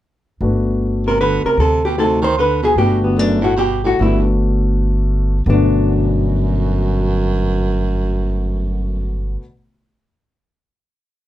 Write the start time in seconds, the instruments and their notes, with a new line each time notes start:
0.41 upright bass G1, grand piano A3 B3 D4 F#4
1.07 baritone saxophone C3, hollow-body jazz guitar A#4
1.20 baritone saxophone D3, hollow-body jazz guitar B4
1.44 baritone saxophone C3, hollow-body jazz guitar A#4, muted upright bass stroke
1.57 upright bass D2, baritone saxophone C3, hollow-body jazz guitar A4
1.85 baritone saxophone B2, hollow-body jazz guitar G4
1.98 baritone saxophone C3, grand piano A3 C4 D#4 F#4, hollow-body jazz guitar A4
2.22 baritone saxophone D#3, hollow-body jazz guitar C5
2.38 baritone saxophone D3, hollow-body jazz guitar B4
2.62 baritone saxophone B2, hollow-body jazz guitar G#4
2.76 upright bass G1, baritone saxophone B2, grand piano A3 B3 D4 F#4, hollow-body jazz guitar G4
3.02 baritone saxophone D2, hollow-body jazz guitar B3
3.16 baritone saxophone F#2, grand piano A3 B3 D4 A4, hollow-body jazz guitar D4
3.41 baritone saxophone A2, hollow-body jazz guitar F#4
3.57 baritone saxophone B2, hollow-body jazz guitar G4
3.84 baritone saxophone A2, hollow-body jazz guitar F#4
3.99 upright bass G1, baritone saxophone G2, grand piano A3 B3 D4 F#4, hollow-body jazz guitar E4
5.46 upright bass G1, baritone saxophone F#2, grand piano B2 D3 A3 B3 F#4, hollow-body jazz guitar D4